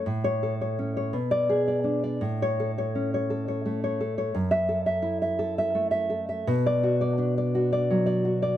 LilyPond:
\new Staff \with { instrumentName = "Nylon-string guitar" } { \time 6/8 \key a \major \tempo 4. = 56 << { r16 cis''8 r4 d''8 r8. | r16 cis''8 r2 r16 | \key fis \minor r16 e''8 r2 r16 | r16 d''8 r2 r16 | } \\ { a,8 a'16 cis''16 cis'16 cis''16 b,8 gis'16 d''16 d'16 d''16 | a,8 a'16 cis''16 cis'16 cis''16 a'16 cis''16 a16 cis''16 a'16 cis''16 | fis,8 a'16 e''16 e'16 e''16 a'16 e''16 a16 e''16 a'16 e''16 | b,8 fis'16 d''16 d'16 d''16 fis'16 d''16 fis16 d''16 fis'16 d''16 | } >> }